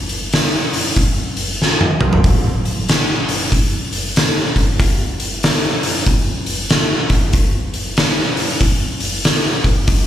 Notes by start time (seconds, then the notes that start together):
0.09 open hi-hat
0.33 snare, open hi-hat
0.73 open hi-hat
0.96 kick, open hi-hat
1.37 open hi-hat
1.62 snare
1.81 high tom
2.01 mid tom
2.13 floor tom
2.24 kick, open hi-hat
2.65 open hi-hat
2.89 snare, open hi-hat
3.29 open hi-hat
3.52 kick, open hi-hat
3.93 open hi-hat
4.16 snare, open hi-hat
4.56 kick, open hi-hat
4.80 kick, open hi-hat
5.20 open hi-hat
5.43 snare, open hi-hat
5.83 open hi-hat
6.06 kick, open hi-hat
6.46 open hi-hat
6.70 snare, open hi-hat
7.10 kick, open hi-hat
7.33 kick, open hi-hat
7.74 open hi-hat
7.97 snare, open hi-hat
8.37 open hi-hat
8.61 kick, open hi-hat
9.00 open hi-hat
9.24 snare, open hi-hat
9.64 kick, open hi-hat
9.88 kick, open hi-hat